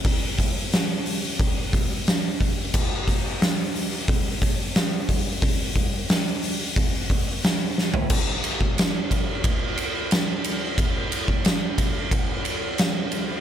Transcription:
\new DrumStaff \with { instrumentName = "Drums" } \drummode { \time 4/4 \tempo 4 = 90 <hho bd>8 <hho bd>8 <hho sn>8 hho8 <hho bd>8 <hho bd>8 <hho sn>8 <hho bd>8 | <cymc bd>8 <hho bd>8 <hho sn>8 hho8 <hho bd>8 <hho bd>8 <hho sn>8 <hho bd>8 | <hho bd>8 <hho bd>8 <hho sn>8 hho8 <hho bd>8 <hho bd>8 <hho sn>8 sn16 tomfh16 | <cymc bd>8 cymr16 bd16 <cymr sn>8 <bd cymr>8 <bd cymr>8 cymr8 <cymr sn>8 cymr8 |
<bd cymr>8 cymr16 bd16 <cymr sn>8 <bd cymr>8 <bd cymr>8 cymr8 <cymr sn>8 cymr8 | }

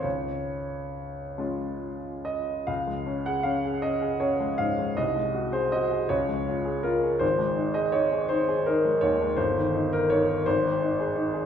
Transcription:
\new Staff \with { instrumentName = "Grand piano" } { \time 6/8 \key des \major \tempo 4. = 54 << { des''4. r4 ees''8 | f''8. ges''16 f''8 ees''8 des''8 f''8 | ees''8. c''16 ees''8 des''4 bes'8 | c''8. ees''16 des''8 c''8 bes'8 des''8 |
c''8. bes'16 des''8 c''4 r8 | } \\ { des,4. <aes des' f'>4. | des,16 aes16 des'16 aes'16 des'16 aes'16 des'16 aes'16 des'16 aes16 aes,16 aes16 | c,16 aes16 ges'16 aes'16 ges'16 aes'16 des,16 aes16 f'16 aes'16 f'16 aes'16 | aes,,16 aes16 ees'16 aes'16 ees'16 aes'16 ees'16 aes'16 ees'16 aes16 ees,16 aes16 |
g,,16 ees16 ees'8 ees'16 bes'16 aes,,16 ees16 ees'16 aes'16 ees'16 aes'16 | } >> }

